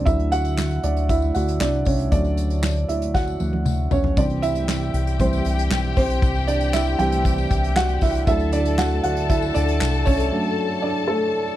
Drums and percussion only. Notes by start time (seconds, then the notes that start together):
0.07 kick, closed hi-hat, tambourine
0.20 closed hi-hat
0.32 closed hi-hat, tambourine
0.45 closed hi-hat, tambourine
0.58 snare, clap, tambourine
0.71 closed hi-hat, tambourine
0.83 closed hi-hat
0.97 closed hi-hat
1.09 kick, closed hi-hat, tambourine
1.22 tambourine
1.35 closed hi-hat, tambourine
1.48 closed hi-hat, tambourine
1.60 snare, clap, tambourine
1.85 kick, open hi-hat, tambourine
1.99 closed hi-hat
2.12 kick, closed hi-hat, tambourine
2.25 closed hi-hat, tambourine
2.37 closed hi-hat, tambourine
2.50 closed hi-hat, tambourine
2.63 snare, clap, tambourine
2.77 closed hi-hat
2.89 closed hi-hat
3.02 closed hi-hat
3.15 kick, snare, tambourine
3.27 tambourine
3.40 high tom, tambourine
3.53 high tom
3.66 mid tom, tambourine
3.91 floor tom, tambourine
4.04 floor tom
4.17 kick, closed hi-hat, tambourine
4.30 closed hi-hat
4.43 closed hi-hat, tambourine
4.55 closed hi-hat, tambourine
4.69 snare, clap, tambourine
4.81 tambourine
4.94 closed hi-hat
5.07 closed hi-hat
5.19 kick, closed hi-hat, tambourine
5.33 closed hi-hat, tambourine
5.45 closed hi-hat, tambourine
5.58 closed hi-hat, tambourine
5.71 snare, clap, tambourine
5.84 closed hi-hat
5.97 kick, snare, open hi-hat, tambourine
6.10 closed hi-hat
6.22 kick, closed hi-hat, tambourine
6.35 tambourine
6.48 closed hi-hat, tambourine
6.61 closed hi-hat, tambourine
6.74 snare, clap, tambourine
6.87 closed hi-hat, tambourine
6.99 closed hi-hat
7.12 closed hi-hat
7.25 kick, closed hi-hat, tambourine
7.38 closed hi-hat, tambourine
7.50 kick, closed hi-hat, tambourine
7.64 closed hi-hat
7.76 snare, clap, tambourine
7.89 closed hi-hat
8.01 kick, snare, open hi-hat, tambourine
8.15 closed hi-hat
8.27 kick, closed hi-hat, tambourine
8.40 closed hi-hat, tambourine
8.52 closed hi-hat, tambourine
8.65 closed hi-hat
8.78 snare, clap, tambourine
8.91 closed hi-hat
9.04 closed hi-hat
9.17 closed hi-hat
9.30 kick, closed hi-hat, tambourine
9.42 tambourine
9.55 closed hi-hat, tambourine
9.68 closed hi-hat, tambourine
9.81 snare, clap, tambourine
9.94 closed hi-hat
10.06 kick, open hi-hat, tambourine
10.20 closed hi-hat